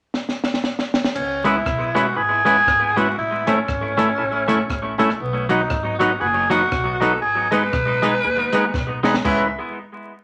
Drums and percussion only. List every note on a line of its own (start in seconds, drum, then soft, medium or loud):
0.14 snare medium
0.29 snare medium
0.44 snare medium
0.54 snare medium
0.64 snare medium
0.79 snare medium
0.94 snare loud
1.04 snare loud
1.15 crash medium
1.45 closed hi-hat medium
1.66 kick medium
1.66 cross-stick loud
1.96 closed hi-hat medium
2.46 closed hi-hat medium
2.67 kick loud
2.67 cross-stick loud
2.97 closed hi-hat medium
3.47 closed hi-hat medium
3.68 kick loud
3.68 cross-stick medium
3.99 closed hi-hat medium
4.49 closed hi-hat loud
4.70 kick medium
4.70 cross-stick loud
4.99 closed hi-hat medium
5.10 cross-stick medium
5.49 closed hi-hat medium
5.70 kick loud
5.70 cross-stick loud
6.01 closed hi-hat medium
6.51 closed hi-hat loud
6.72 kick loud
6.72 cross-stick loud
7.02 closed hi-hat medium
7.52 closed hi-hat medium
7.73 kick loud
7.73 cross-stick medium
8.03 closed hi-hat medium
8.53 closed hi-hat loud
8.74 kick loud
8.74 snare medium
9.04 snare medium
9.14 snare medium
9.25 kick loud
9.25 crash medium